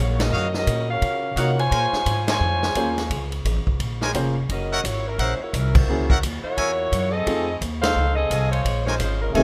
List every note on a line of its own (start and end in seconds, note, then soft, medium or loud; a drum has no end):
0.00 0.31 A#1 medium
0.00 0.20 A#3 medium
0.00 0.21 F4 medium
0.00 0.19 F#4 medium
0.00 0.21 C#5 medium
0.20 0.55 C#4 medium
0.20 0.55 F#4 medium
0.20 0.55 A#4 medium
0.20 0.55 D#5 loud
0.20 snare medium
0.20 ride medium
0.32 0.66 F#2 medium
0.32 0.47 F#4 medium
0.32 0.47 C#5 medium
0.32 0.47 D#5 medium
0.32 0.47 F5 loud
0.54 0.88 C#4 medium
0.54 0.88 F#4 medium
0.54 0.88 A#4 medium
0.54 0.88 D#5 loud
0.54 snare medium
0.67 1.01 A#2 medium
0.67 kick soft
0.67 hi-hat pedal medium
0.67 ride medium
0.90 1.34 C#4 medium
0.90 1.34 F#4 medium
0.90 1.34 A#4 medium
0.90 1.34 F5 loud
1.02 1.35 C#3 medium
1.02 kick soft
1.02 ride medium
1.35 1.70 C3 loud
1.35 1.57 A#3 medium
1.35 1.59 C#4 medium
1.35 1.57 D#4 soft
1.35 1.58 F4 medium
1.35 1.57 F4 soft
1.35 1.51 F#4 medium
1.35 1.57 F#4 medium
1.35 1.59 A#4 medium
1.35 1.51 C#5 medium
1.35 1.57 C#5 medium
1.35 1.51 D#5 medium
1.35 1.51 F5 medium
1.35 1.59 F#5 loud
1.35 kick soft
1.35 hi-hat pedal medium
1.35 ride medium
1.59 2.24 F4 loud
1.59 2.24 C5 loud
1.59 2.24 C#5 loud
1.59 2.24 G#5 loud
1.59 ride soft
1.70 1.92 A#2 medium
1.70 1.85 A#4 medium
1.70 1.86 C5 medium
1.70 1.85 C#5 medium
1.70 1.85 G#5 medium
1.70 kick soft
1.70 ride medium
1.93 muted upright bass stroke soft
1.93 snare soft
2.06 2.40 G#2 medium
2.06 kick soft
2.06 hi-hat pedal medium
2.06 ride medium
2.27 3.29 F4 medium
2.27 2.36 A#4 medium
2.27 2.36 C5 medium
2.27 3.29 C5 medium
2.27 2.36 C#5 medium
2.27 3.29 C#5 medium
2.27 2.36 G#5 medium
2.27 3.29 G#5 loud
2.27 snare medium
2.27 ride medium
2.40 2.74 F2 medium
2.63 snare medium
2.75 3.09 D#2 medium
2.75 2.96 A#3 medium
2.75 2.96 C#4 medium
2.75 2.96 F4 medium
2.75 2.96 G#4 medium
2.75 2.96 C5 medium
2.75 kick soft
2.75 hi-hat pedal medium
2.75 ride medium
2.98 snare soft
2.98 ride soft
3.10 3.44 C#2 medium
3.10 kick soft
3.10 ride medium
3.32 ride soft
3.45 3.57 A1 medium
3.45 kick soft
3.45 hi-hat pedal medium
3.45 ride medium
3.56 3.67 G#1 medium
3.67 3.79 F1 medium
3.67 kick soft
3.79 4.13 A#1 medium
3.79 kick soft
3.79 ride medium
4.01 4.10 A#4 medium
4.01 4.10 C5 medium
4.01 4.10 C#5 medium
4.01 4.10 G#5 loud
4.01 snare medium
4.14 4.48 F1 medium
4.14 4.34 A#3 medium
4.14 4.34 C#4 medium
4.14 4.34 F4 medium
4.14 4.34 G#4 medium
4.14 4.34 C5 medium
4.14 kick soft
4.14 hi-hat pedal medium
4.14 ride medium
4.49 4.83 F#1 medium
4.49 4.83 C#4 medium
4.49 4.83 F#4 medium
4.49 4.83 A#4 medium
4.49 4.83 D#5 medium
4.49 kick soft
4.49 ride medium
4.71 4.80 A#4 loud
4.71 4.80 C#5 medium
4.71 4.80 E5 loud
4.71 4.80 F#5 loud
4.84 5.17 G#1 medium
4.84 5.06 A#3 medium
4.84 5.05 E4 medium
4.84 5.06 F#4 medium
4.84 5.06 C#5 medium
4.84 kick soft
4.84 hi-hat pedal medium
4.84 ride medium
5.06 5.19 F#3 medium
5.06 5.18 C#4 medium
5.06 5.18 E4 medium
5.06 5.19 A#4 medium
5.18 5.39 A#1 medium
5.18 5.39 G#3 medium
5.18 5.39 C#4 medium
5.18 5.39 E4 medium
5.18 5.33 A#4 medium
5.18 5.39 C5 medium
5.18 5.33 C#5 medium
5.18 5.33 E5 medium
5.18 5.33 F#5 loud
5.18 kick soft
5.18 ride medium
5.40 5.52 A#3 medium
5.40 5.52 E4 medium
5.40 5.53 F#4 medium
5.40 5.53 C#5 medium
5.40 muted upright bass stroke soft
5.53 5.86 C2 medium
5.53 5.75 F#3 medium
5.53 5.75 C#4 medium
5.53 5.73 E4 medium
5.53 5.75 A#4 medium
5.53 kick soft
5.53 hi-hat pedal medium
5.53 ride medium
5.74 6.22 A#3 medium
5.74 6.22 E4 medium
5.74 6.22 F#4 medium
5.74 6.23 C5 loud
5.74 kick medium
5.74 crash medium
5.87 6.21 C#2 medium
5.87 6.08 A#3 medium
5.87 6.08 C#4 medium
5.87 6.08 E4 medium
5.87 6.08 F#4 medium
5.87 6.08 G#4 medium
6.10 6.18 A#4 medium
6.10 6.18 C#5 medium
6.10 6.18 E5 medium
6.10 6.18 F#5 loud
6.10 kick medium
6.23 6.43 D#2 medium
6.23 kick soft
6.23 hi-hat pedal medium
6.23 ride medium
6.43 7.09 A#3 medium
6.43 7.09 E4 medium
6.43 7.09 F#4 medium
6.43 7.09 C#5 loud
6.43 muted upright bass stroke soft
6.57 6.91 E2 medium
6.57 6.72 A#4 medium
6.57 6.72 C#5 medium
6.57 6.72 E5 medium
6.57 6.72 G#5 loud
6.57 kick soft
6.57 ride medium
6.92 7.26 F#2 medium
6.92 kick soft
6.92 hi-hat pedal medium
6.92 ride medium
7.11 7.60 C4 medium
7.11 7.60 G#4 medium
7.11 7.60 A4 loud
7.11 7.60 D#5 loud
7.27 7.60 F2 medium
7.27 7.46 A3 medium
7.27 7.47 C4 medium
7.27 7.46 D#4 medium
7.27 7.46 F4 medium
7.27 7.46 G#4 medium
7.27 kick soft
7.27 ride medium
7.61 7.95 D#2 loud
7.61 kick soft
7.61 hi-hat pedal medium
7.61 ride medium
7.80 8.14 D#4 loud
7.80 8.14 A4 loud
7.80 8.14 C5 loud
7.80 8.14 F5 loud
7.80 snare medium
7.80 ride medium
7.96 8.30 C#2 medium
8.16 8.49 C4 medium
8.16 8.49 G#4 medium
8.16 8.49 A4 medium
8.16 8.49 D#5 loud
8.30 8.64 C2 medium
8.30 8.65 A4 medium
8.30 8.65 D#5 medium
8.30 8.65 F5 medium
8.30 8.65 G#5 medium
8.30 kick soft
8.30 hi-hat pedal medium
8.30 ride medium
8.51 8.84 G#3 medium
8.51 8.84 F4 medium
8.51 8.84 C5 medium
8.51 8.84 C#5 loud
8.51 ride soft
8.65 8.99 A#1 medium
8.65 kick soft
8.65 ride medium
8.86 8.99 G#3 medium
8.86 8.99 C#4 medium
8.86 8.99 F4 medium
8.86 8.95 A#4 medium
8.86 8.99 C5 medium
8.86 8.95 C5 medium
8.86 8.95 C#5 medium
8.86 8.95 G#5 loud
8.86 snare soft
9.00 9.34 G#1 medium
9.00 9.20 G#3 medium
9.00 9.20 C#4 medium
9.00 9.20 F4 medium
9.00 9.21 C5 medium
9.00 kick soft
9.00 hi-hat pedal medium
9.00 ride medium
9.21 9.33 G#3 medium
9.21 9.33 C#4 medium
9.21 9.34 F4 medium
9.21 9.34 A#4 medium
9.33 9.43 F1 medium
9.33 9.43 C3 medium
9.33 9.43 D#3 medium
9.33 9.43 A3 medium
9.33 9.43 C4 medium
9.33 9.43 G#4 medium
9.33 9.43 A4 medium
9.33 9.43 D#5 medium
9.33 9.43 F5 medium
9.33 9.43 G#5 loud
9.33 kick soft
9.33 ride medium